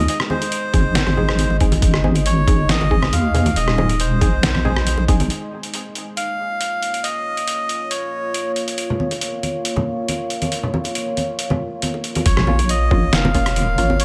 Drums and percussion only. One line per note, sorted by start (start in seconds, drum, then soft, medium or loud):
0.08 closed hi-hat medium
0.20 cross-stick medium
0.30 high conga medium
0.42 closed hi-hat soft
0.42 high bongo medium
0.52 closed hi-hat medium
0.74 kick loud
0.74 closed hi-hat soft
0.74 high conga medium
0.95 snare loud
0.95 closed hi-hat medium
0.95 low conga medium
1.07 cross-stick medium
1.07 high conga medium
1.17 low conga medium
1.29 cross-stick medium
1.38 closed hi-hat medium
1.38 high conga medium
1.50 high bongo medium
1.60 kick loud
1.60 closed hi-hat soft
1.72 closed hi-hat soft
1.72 high conga medium
1.82 kick loud
1.82 closed hi-hat medium
1.94 cross-stick medium
2.04 high conga medium
2.15 closed hi-hat medium
2.15 high bongo soft
2.26 closed hi-hat medium
2.47 kick loud
2.47 closed hi-hat medium
2.47 high conga medium
2.69 snare loud
2.69 closed hi-hat medium
2.81 high bongo medium
2.81 high conga medium
2.91 kick medium
3.02 cross-stick medium
3.02 low conga medium
3.13 closed hi-hat medium
3.13 high conga medium
3.35 closed hi-hat soft
3.35 low conga medium
3.46 closed hi-hat medium
3.46 high conga medium
3.56 closed hi-hat medium
3.68 cross-stick medium
3.78 high conga medium
3.78 low conga medium
3.89 closed hi-hat medium
3.89 high bongo medium
4.00 closed hi-hat medium
4.21 kick loud
4.21 closed hi-hat medium
4.21 high conga medium
4.43 snare loud
4.43 closed hi-hat medium
4.43 low conga medium
4.55 cross-stick medium
4.55 high conga medium
4.65 low conga medium
4.76 cross-stick medium
4.76 high bongo soft
4.87 closed hi-hat medium
4.87 high conga medium
4.98 high bongo medium
5.08 kick loud
5.08 closed hi-hat medium
5.20 closed hi-hat medium
5.20 high conga medium
5.30 closed hi-hat medium
5.63 closed hi-hat soft
5.74 closed hi-hat medium
5.95 closed hi-hat soft
6.17 closed hi-hat medium
6.61 closed hi-hat medium
6.82 closed hi-hat soft
6.94 closed hi-hat soft
7.04 closed hi-hat medium
7.37 closed hi-hat soft
7.48 closed hi-hat medium
7.69 closed hi-hat soft
7.91 closed hi-hat medium
8.34 closed hi-hat medium
8.56 closed hi-hat soft
8.68 closed hi-hat medium
8.78 closed hi-hat medium
8.90 low conga medium
9.00 high conga medium
9.11 closed hi-hat soft
9.11 high bongo soft
9.21 closed hi-hat medium
9.43 closed hi-hat soft
9.43 high conga medium
9.65 closed hi-hat medium
9.76 high bongo medium
9.76 high conga medium
9.76 low conga medium
10.08 closed hi-hat medium
10.08 high conga medium
10.30 closed hi-hat soft
10.42 closed hi-hat soft
10.42 high conga medium
10.52 closed hi-hat medium
10.63 low conga medium
10.74 high conga medium
10.84 closed hi-hat soft
10.84 high bongo soft
10.95 closed hi-hat medium
11.17 closed hi-hat soft
11.17 high conga medium
11.39 closed hi-hat medium
11.50 high conga medium
11.50 low conga medium
11.82 closed hi-hat medium
11.82 high conga medium
11.94 high bongo medium
12.04 closed hi-hat soft
12.15 closed hi-hat soft
12.15 high conga medium
12.26 kick loud
12.26 closed hi-hat medium
12.37 cross-stick medium
12.37 low conga medium
12.47 high conga medium
12.59 closed hi-hat medium
12.59 high bongo medium
12.69 closed hi-hat medium
12.91 kick loud
12.91 high conga medium
13.13 snare loud
13.13 closed hi-hat medium
13.25 high bongo medium
13.25 high conga loud
13.25 low conga medium
13.35 kick medium
13.35 closed hi-hat medium
13.46 cross-stick medium
13.46 closed hi-hat medium
13.56 closed hi-hat medium
13.56 high conga medium
13.78 closed hi-hat medium
13.90 high conga loud
14.00 closed hi-hat medium